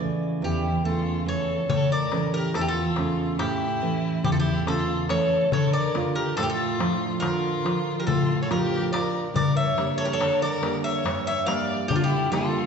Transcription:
Already playing: bouzouki D5
0.00 nylon-string guitar C#3 E3 A3
0.42 nylon-string guitar E2, violin E4, bouzouki G4
0.84 nylon-string guitar C#3 A3, violin F4, bouzouki A4
1.26 nylon-string guitar E3 A3 C#4, violin A4, bouzouki C#5
1.69 nylon-string guitar A2, violin A4, bouzouki C#5, darbuka dum
1.92 violin A#4, bouzouki D5
2.11 nylon-string guitar E3 A3 C#4, darbuka tek
2.34 violin G4, bouzouki A#4
2.54 nylon-string guitar E2, violin E4, bouzouki A4, darbuka tek
2.60 violin E4, bouzouki G4
2.69 violin F4, bouzouki A4
2.96 nylon-string guitar C#3 A3 C#4, darbuka tek
3.39 nylon-string guitar A2, violin E4, bouzouki G4, darbuka tek
3.82 nylon-string guitar E3 A3 C#4
4.24 nylon-string guitar E2, violin E4, bouzouki G4, darbuka dum
4.31 violin F4, bouzouki A4
4.38 violin E4, bouzouki G4
4.67 nylon-string guitar C#3 A3 C#4, violin F4, bouzouki A4, darbuka tek
4.88 darbuka tek
5.09 nylon-string guitar E3 A3 C#4, violin A4, bouzouki C#5, darbuka tek
5.52 nylon-string guitar D3, violin A4, bouzouki C#5, darbuka dum
5.73 violin A#4, bouzouki D5
5.94 nylon-string guitar A3 D4 F4, darbuka tek
6.16 violin G4, bouzouki A#4
6.37 nylon-string guitar A2, violin F4, bouzouki A4, darbuka tek
6.43 violin E4, bouzouki G4
6.50 violin F4, bouzouki A4
6.79 nylon-string guitar F3 D4 F4, darbuka tek
7.20 nylon-string guitar D3, violin F4, bouzouki A#4, darbuka tek
7.64 nylon-string guitar F3 D4 F4, darbuka tek
8.00 violin G4, bouzouki A#4
8.07 nylon-string guitar A2, violin F4, bouzouki A4, darbuka dum
8.42 violin A4, bouzouki C#5
8.50 nylon-string guitar F3 D4 F4, violin G4, bouzouki A#4, darbuka tek
8.72 darbuka tek
8.93 nylon-string guitar D4 F4, violin A#4, bouzouki D5, darbuka tek
9.34 nylon-string guitar G2, violin A#4, bouzouki D5, darbuka dum
9.57 violin C#5, bouzouki E5
9.77 nylon-string guitar G3 A#3 D4, darbuka tek
9.98 violin A4, bouzouki C#5
10.05 violin G4, bouzouki A#4
10.11 violin A4, bouzouki C#5
10.20 nylon-string guitar D3, darbuka tek
10.41 violin A#4, bouzouki D5
10.61 nylon-string guitar G3 A#3 D4, darbuka tek
10.84 violin C#5, bouzouki E5
11.04 nylon-string guitar G2, darbuka tek
11.26 violin C#5, bouzouki E5
11.46 nylon-string guitar G3 A#3 D4, violin D5, bouzouki F5, darbuka tek
11.88 nylon-string guitar D3, violin D4, bouzouki G4, darbuka dum
11.95 violin D4, bouzouki F4
12.04 violin E4, bouzouki G4
12.31 nylon-string guitar G3 A#3 D4, violin F4, bouzouki A4, darbuka tek
12.55 darbuka tek

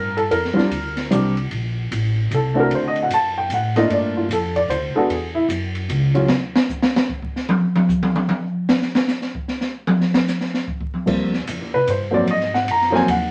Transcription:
Already playing: upright bass G2, upright piano G3 C4 D4 F4 A#4
0.17 upright piano A4, ride
0.31 upright bass F2, upright piano A#4, ride
0.45 snare
0.54 upright piano G3 C4 D4 F4, muted upright bass stroke
0.58 snare
0.71 upright bass D2, ride
0.97 snare, ride
1.11 upright bass C2, upright piano G3 C4 D4 G4, hi-hat pedal, ride
1.37 ride
1.51 upright bass A#1, ride
1.91 upright bass A1, hi-hat pedal, ride
2.31 upright bass C2, upright piano A4, hi-hat pedal, ride
2.54 upright piano A3 C4 D4 F#4
2.60 upright piano A#4
2.70 upright bass D2, ride
2.75 upright piano C5
2.88 upright piano D#5
2.96 ride
3.02 upright piano F#5
3.09 upright bass F#2, hi-hat pedal, ride
3.13 upright piano A5
3.38 upright piano G5
3.50 upright bass A2, hi-hat pedal, ride
3.54 upright piano F#5
3.76 upright piano A3 A#3 D4 F4 D#5, snare, ride
3.89 upright bass G2, upright piano D5, ride
4.17 upright piano F4
4.29 upright bass F2, hi-hat pedal, ride
4.33 upright piano A4
4.56 upright piano D5, ride
4.68 upright bass D2, upright piano C5, hi-hat pedal, ride
4.95 upright piano G#3 B3 D4 F#4 A4, muted upright bass stroke
5.09 upright bass E2, upright piano G#4, ride
5.35 upright piano E4
5.48 upright bass F#2, hi-hat pedal, ride
5.75 ride
5.89 upright bass C#2, hi-hat pedal, ride
6.14 upright piano F#3 G#3 C#4 F4, ride
6.28 upright bass D#2, snare
6.56 snare
6.69 kick, hi-hat pedal
6.82 snare
6.96 snare
7.09 kick
7.22 kick
7.36 snare
7.49 mid tom
7.76 mid tom
7.89 kick, hi-hat pedal
8.03 mid tom
8.16 mid tom
8.29 mid tom
8.69 snare
8.82 snare
8.95 snare
9.08 snare, hi-hat pedal
9.22 snare
9.35 kick
9.48 snare
9.61 snare
9.87 mid tom
10.01 snare
10.14 snare
10.28 snare, hi-hat pedal
10.41 snare
10.54 snare
10.67 kick
10.81 kick
10.94 mid tom
11.06 upright bass D#2, upright piano F3 G3 A#3 C4, kick, crash
11.33 snare
11.47 upright bass F2, hi-hat pedal, ride
11.60 upright bass D#2
11.73 upright bass C2, upright piano B4
11.87 upright bass G2, upright piano C5, hi-hat pedal, ride
12.11 upright piano F3 F#3 A#3 C4 D5
12.27 upright bass G#2, upright piano D#5, ride
12.40 snare
12.54 upright piano F#5, snare
12.67 upright bass F#2, ride
12.71 upright piano A#5
12.82 snare
12.90 upright piano F3 F#3 A#3 C4
12.95 upright piano G#5, snare
13.07 upright bass D#2, upright piano F#5, hi-hat pedal, ride

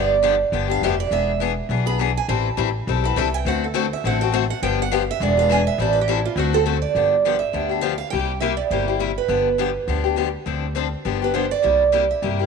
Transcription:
Already playing: upright bass G1, steel-string acoustic guitar D3 F3 B3 D4 G4
0.00 steel-string acoustic guitar D5
0.23 steel-string acoustic guitar D3 F3 B3 D4 G4
0.52 upright bass G1, steel-string acoustic guitar D3 F3 B3 D4 G4
0.68 steel-string acoustic guitar B3 D4 G4 F5
0.82 upright bass F1, steel-string acoustic guitar D3 F3 B3 D4 G4 E5
1.00 steel-string acoustic guitar D5
1.11 upright bass E1, steel-string acoustic guitar E3 B3 D4 G#4 E5
1.40 steel-string acoustic guitar E3 B3 D4 G#4
1.69 upright bass B1, steel-string acoustic guitar E3 B3 D4 G#4
1.86 steel-string acoustic guitar B3 D4 G#4 B5
1.99 steel-string acoustic guitar E3 B3 D4 G#4 A5
2.17 steel-string acoustic guitar G#5
2.28 upright bass A1, steel-string acoustic guitar E3 G3 C4 E4 A4 A5
2.57 upright bass A1, steel-string acoustic guitar E3 G3 C4 E4 A4
2.87 upright bass B1, steel-string acoustic guitar E3 G3 C4 E4 A4
3.04 steel-string acoustic guitar C4 E4 A4 B4
3.16 upright bass C2, steel-string acoustic guitar E3 G3 C4 E4 A4 E5
3.34 steel-string acoustic guitar G5
3.45 upright bass D2, steel-string acoustic guitar D3 A3 C4 F#4 A4 F#5
3.64 steel-string acoustic guitar A4
3.74 steel-string acoustic guitar D3 A3 C4 F#4 A4 C5
3.93 steel-string acoustic guitar E5
4.04 upright bass A1, steel-string acoustic guitar D3 A3 C4 F#4 A4 F#5
4.21 steel-string acoustic guitar C4 F#4 A4 G5
4.32 steel-string acoustic guitar D3 A3 C4 F#4 A4 A5
4.50 steel-string acoustic guitar F#5
4.62 upright bass G1, steel-string acoustic guitar D3 F3 B3 D4 G4 G5
4.82 steel-string acoustic guitar F#5
4.91 steel-string acoustic guitar D3 F3 B3 D4 G4 F5
5.11 steel-string acoustic guitar E5
5.20 upright bass E1, steel-string acoustic guitar E3 B3 D4 G#4 D5
5.37 steel-string acoustic guitar B3 D4 G#4 F5
5.49 steel-string acoustic guitar E3 B3 D4 G#4 G#5
5.67 steel-string acoustic guitar E5
5.78 upright bass A1, steel-string acoustic guitar E3 G3 C4 E4 A4 D5
5.93 steel-string acoustic guitar B4
6.01 steel-string acoustic guitar G4
6.08 steel-string acoustic guitar E3 G3 C4 E4 A4
6.25 steel-string acoustic guitar F4
6.36 upright bass D2, steel-string acoustic guitar D3 A3 C4 F#4 A4
6.53 steel-string acoustic guitar C4 F#4 A4 C5
6.66 steel-string acoustic guitar D3 A3 C4 F#4 A4
6.82 steel-string acoustic guitar D5
6.95 upright bass G1, steel-string acoustic guitar D3 F3 B3 D4 G4
7.25 steel-string acoustic guitar D3 F3 B3 D4 G4
7.39 steel-string acoustic guitar E5
7.53 upright bass D2, steel-string acoustic guitar D3 F3 B3 D4 G4
7.69 steel-string acoustic guitar B3 D4 G4
7.81 steel-string acoustic guitar D3 F3 B3 D4 G4 F5
7.98 steel-string acoustic guitar F5
8.10 upright bass C2, steel-string acoustic guitar C3 G3 A#3 E4 G4 G5
8.40 steel-string acoustic guitar C3 G3 A#3 E4 G4 E5
8.57 steel-string acoustic guitar D5
8.71 upright bass G1, steel-string acoustic guitar C3 G3 A#3 E4 G4 C5
8.87 steel-string acoustic guitar A#3 E4 G4
9.00 steel-string acoustic guitar C3 G3 A#3 E4 G4
9.18 steel-string acoustic guitar B4
9.28 upright bass G1, steel-string acoustic guitar D3 F3 B3 D4 G4
9.58 steel-string acoustic guitar D3 F3 B3 D4 G4
9.87 upright bass D2, steel-string acoustic guitar D3 F3 B3 D4 G4
10.04 steel-string acoustic guitar B3 D4 G4
10.16 steel-string acoustic guitar D3 F3 B3 D4 G4
10.46 upright bass D2, steel-string acoustic guitar D3 F3 C4 D4 A4
10.75 steel-string acoustic guitar D3 F3 C4 D4 A4
11.05 upright bass G1, steel-string acoustic guitar D3 F3 B3 D4 G4
11.22 steel-string acoustic guitar B3 D4 G4 B4
11.34 steel-string acoustic guitar D3 F3 B3 D4 G4 C5
11.51 steel-string acoustic guitar D5
11.62 upright bass C2, steel-string acoustic guitar C3 G3 A#3 E4 G4
11.92 steel-string acoustic guitar C3 G3 A#3 E4 G4
12.11 steel-string acoustic guitar E5
12.22 upright bass G2, steel-string acoustic guitar C3 G3 A#3 E4 G4
12.39 steel-string acoustic guitar A#3 E4 G4

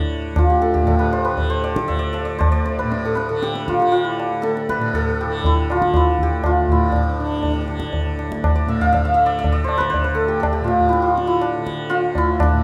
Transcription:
Already playing: tanpura D2 A2 D3, santur D4 E4 G4
0.32 tanpura D2
0.36 santur F4, tabla na, tabla ge
0.50 santur G4
0.62 santur A4, tabla te
0.74 santur G4, tabla ge
0.81 tanpura A2
0.87 santur A4, tabla tin, tabla ge
0.99 santur B4
1.12 santur C5, tabla na
1.25 santur B4
1.32 tanpura D3
1.38 tabla tin, tabla ge
1.50 santur C5
1.64 santur D5, tabla na
1.76 tabla ke
1.83 tanpura D3
1.88 santur E5, tabla tin, tabla ge
1.99 santur D5
2.13 santur E5, tabla na
2.25 santur D5
2.34 tanpura D2
2.39 santur C5, tabla na, tabla ge
2.52 santur D5
2.65 santur C5, tabla te
2.79 tanpura A2, santur B4, tabla ge
2.92 tabla te
3.05 santur A4
3.15 santur B4, tabla te
3.29 tanpura D3, santur A4
3.43 santur G4, tabla te
3.55 tabla te
3.68 santur F4, tabla ke
3.80 tanpura D3, santur G4, tabla te
3.92 santur F4, tabla tin
4.04 santur E4
4.20 tabla na
4.29 tanpura D2
4.42 santur A4, tabla te
4.57 tabla te
4.69 santur B4, tabla ke
4.78 tanpura A2, tabla te
4.94 santur A4, tabla tin, tabla ge
5.21 santur G4
5.26 tanpura D3
5.44 santur E4, tabla tin, tabla ge
5.70 santur F4, tabla na
5.74 tanpura D3
5.82 tabla ke
5.94 santur E4, tabla na, tabla ge
6.19 santur G4, tabla ge
6.23 tanpura D2
6.44 santur F4, tabla na, tabla ge
6.69 tanpura A2, santur E4, tabla ge
6.92 santur D4, tabla tin, tabla ge
7.03 santur D4
7.09 santur D4
7.13 santur D4
7.19 tanpura D3, santur D4
7.25 santur D4
7.32 santur D4
7.38 santur D4
7.43 santur D4, tabla tin, tabla ge
7.50 santur D4
7.61 santur D4
7.68 tanpura D3, tabla na
7.80 tabla ke
7.93 tabla tin, tabla ge
8.17 tanpura D2, tabla na
8.32 tabla ke
8.44 tabla na, tabla ge
8.55 santur D5
8.66 tanpura A2, santur E5, tabla te
8.81 santur F5, tabla ge
8.92 santur E5, tabla tin, tabla ge
9.05 santur F5
9.14 tanpura D3, santur E5
9.26 santur D5
9.39 santur E5
9.44 tabla tin, tabla ge
9.52 santur D5
9.63 tanpura D3, santur C5
9.69 tabla na
9.78 santur B4, tabla ke
9.90 santur C5
9.94 tabla tin, tabla ge
10.04 santur B4
10.12 tanpura D2, santur A4
10.28 santur G4
10.40 santur A4, tabla na, tabla ge
10.53 santur G4
10.61 tanpura A2, santur F4
10.68 tabla te
10.80 tabla ge
10.89 santur E4
10.93 tabla te
11.02 santur F4
11.07 tanpura D3
11.18 tabla te
11.27 santur E4
11.42 santur D4, tabla na
11.58 tanpura D3
11.67 tabla ke
11.90 santur F4, tabla te
12.03 tanpura D2
12.15 santur E4, tabla tin, tabla ge
12.40 santur D4, tabla na, tabla ge
12.52 tanpura A2

